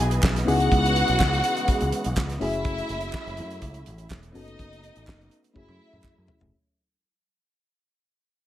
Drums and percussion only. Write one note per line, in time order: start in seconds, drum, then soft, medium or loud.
0.11 closed hi-hat medium
0.23 kick loud
0.23 snare loud
0.23 clap medium
0.25 clap medium
0.36 snare soft
0.36 closed hi-hat medium
0.48 open hi-hat medium
0.60 closed hi-hat soft
0.72 kick loud
0.72 closed hi-hat medium
0.86 closed hi-hat medium
0.96 closed hi-hat medium
1.08 closed hi-hat soft
1.20 kick loud
1.20 snare medium
1.20 clap medium
1.22 clap medium
1.33 closed hi-hat soft
1.44 closed hi-hat medium
1.57 closed hi-hat soft
1.68 kick loud
1.68 closed hi-hat medium
1.81 closed hi-hat medium
1.92 closed hi-hat medium
2.04 closed hi-hat soft
2.17 kick loud
2.17 snare loud
2.17 clap loud
2.17 clap medium
2.30 snare soft
2.30 closed hi-hat medium
2.41 open hi-hat medium
2.53 closed hi-hat soft
2.65 kick loud
2.65 closed hi-hat medium
2.78 closed hi-hat medium
2.89 closed hi-hat medium
3.01 closed hi-hat soft
3.13 kick loud
3.13 snare loud
3.13 clap medium
3.15 clap medium
3.27 closed hi-hat soft
3.37 closed hi-hat medium
3.50 closed hi-hat soft
3.62 kick loud
3.62 closed hi-hat medium
3.74 closed hi-hat medium
3.86 closed hi-hat medium
3.98 closed hi-hat soft
4.10 kick loud
4.10 snare loud
4.10 clap medium
4.12 clap medium
4.23 closed hi-hat medium
4.35 open hi-hat medium
4.48 closed hi-hat medium
4.59 kick loud
4.59 closed hi-hat medium
4.73 closed hi-hat medium
4.84 closed hi-hat medium
4.96 closed hi-hat soft
5.07 kick loud
5.07 snare loud
5.07 clap medium
5.10 clap medium
5.21 closed hi-hat soft
5.31 closed hi-hat medium
5.44 closed hi-hat soft
5.56 kick medium
5.56 high tom medium
5.69 high tom medium
5.93 mid tom medium
6.04 kick loud
6.04 clap loud
6.04 mid tom medium
6.28 floor tom loud
6.41 floor tom loud